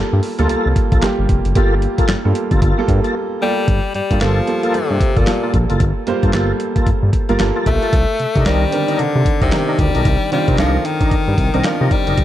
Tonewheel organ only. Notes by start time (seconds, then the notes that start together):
0.38 A#3 F4 A4
0.49 A#3 F4 A4
0.92 A#3 F4 A4
1.55 A#3 F4 A4
1.98 A#3 F4 A4
2.51 A#3 F4 A4
2.61 A#3 F4 A4
3.04 A#3 F4 A4
4.10 A#3 F4 A4
4.21 A#3 F4 A4
4.63 A#3 F4 A4
5.16 A#3 F4 A4
5.43 A#3 F4 A4
5.69 A#3 F4 A4
6.22 A#3 F4 A4
6.33 A#3 F4 A4
6.76 A#3 F4 A4
7.29 A#3 F4 A4
7.56 A#3 F4 A4
7.82 A#3 F4 A4
8.35 D4 D#4 A#4
8.46 D4 D#4 A#4
8.88 D4 D#4 A#4
9.41 D4 D#4 A#4
9.68 D4 D#4 A#4
9.94 D4 D#4 A#4
10.48 D4 D#4 A#4
10.58 D4 D#4 A#4
11.01 D4 D#4 A#4
11.54 D4 D#4 A#4
11.80 D4 D#4 A#4
12.07 D4 D#4 A#4